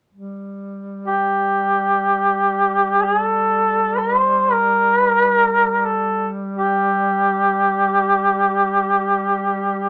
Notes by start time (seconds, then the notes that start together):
0.13 G3
1.07 G4
3.03 G#4
3.22 A4
3.98 C5
4.52 A#4
4.97 B4
5.09 A#4
5.22 B4
5.34 A#4
5.80 A#4
5.86 A4
6.58 G4